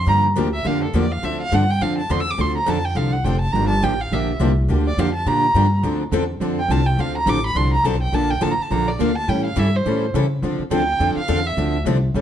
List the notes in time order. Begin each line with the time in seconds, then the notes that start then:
0.06 G2 D3 F3 A#3 D4 G4 A#5
0.36 D2 D3 F3 A#3 D4 G4
0.54 E5
0.64 F2 D3 F3 A#3 D4 G4 F5
0.84 A4
0.93 E2 D3 F3 A#3 D4 G4 D5
1.12 F5
1.23 D2 D3 F3 C4 D4 A4 E5
1.41 F5
1.52 G2 D3 F3 C4 D4 A4 F#5
1.70 G5
1.81 F2 D3 F3 C4 D4 A4 F5
1.98 A5
2.09 E2 D3 F3 C4 D4 A4 C6
2.20 E6
2.30 D6
2.37 D2 D3 F3 C4 D4 A4 C6
2.57 A#5
2.66 F2 D3 F3 C4 D4 A4 A5
2.85 G5
2.95 C2 D3 F3 C4 D4 A4 F5
3.12 F#5
3.24 F1 D3 F3 C4 D4 A4 G5
3.41 A5
3.52 G1 D3 F3 A#3 D4 G4 A#5
3.69 A5
3.82 A1 D3 F3 A#3 D4 G4 G5
4.01 F5
4.12 A#1 D3 F3 A#3 D4 G4 E5
4.40 C2 D3 F3 A#3 D4 G4
4.68 D2 D3 F3 A#3 D4 G4
4.87 D5
4.97 F2 D3 F3 A#3 D4 G4 F5
5.15 A5
5.26 A#2 D3 F3 A#3 D4 G4 A#5
5.54 G2 D3 F3 A#3 D4 G4
5.83 D2 D3 F3 C4 D4 A4
6.12 E2 D3 F3 C4 D4 A4
6.40 F2 D3 F3 C4 D4 A4
6.59 G5
6.68 C2 D3 F3 C4 D4 A4 A5
6.86 G5
6.97 D2 D3 F3 C4 D4 A4 F5
7.18 A#5
7.26 A1 D3 F3 C4 D4 A4 D6
7.46 B5
7.55 C2 D3 F3 C4 D4 A4 C6
7.73 A#5
7.83 B1 D3 F3 C4 D4 A4 A5
8.02 G5
8.12 A#1 D3 F3 A#3 D4 A4 A5
8.30 G5
8.41 A1 D3 F3 A#3 D4 A4 A5
8.51 A#5
8.59 A5, muted upright bass stroke
8.70 A#1 D3 F3 A#3 D4 A4 A#5
8.88 D5
8.99 D2 D3 F3 A#3 D4 A4 F5
9.15 A5
9.28 A2 E3 G3 C#4 E4 A4 G5
9.45 F5
9.56 G2 E3 G3 C#4 E4 A4 E5
9.76 C5
9.86 A2 E3 G3 C#4 E4 A4
10.14 C#3 E3 G3 C#4 E4 A4
10.42 D3 F3 C4 D4 A4
10.59 muted upright bass stroke
10.71 D2 D3 F3 C4 D4 A4 G5
11.00 F2 D3 F3 C4 D4 A4
11.16 F5, muted upright bass stroke
11.28 E2 D3 F3 C4 D4 A4
11.46 E5
11.57 D2 D3 F3 C4 D4 A4
11.85 C2 D3 F3 C4 D4 A4
12.14 A1 E3 G3 C#4 E4 A4